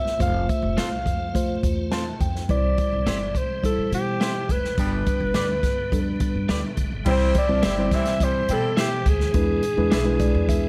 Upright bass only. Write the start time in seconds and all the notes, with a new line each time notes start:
Already playing: G1
0.20 F1
0.62 F1
0.78 C2
1.06 F2
1.63 E2
2.20 F2
2.49 C2
2.92 C2
3.06 G1
3.35 C3
3.78 muted upright bass stroke
3.92 B2
4.49 F1
4.78 G1
5.20 G1
5.35 D2
5.63 G2
5.92 F2
6.21 muted upright bass stroke
6.35 G2
6.49 D2
6.77 G1
6.92 G1
7.06 C2
7.49 C2
7.63 G1
7.91 C3
8.49 B2
9.06 D2
9.34 E2
9.77 E2
9.92 B1
10.35 E2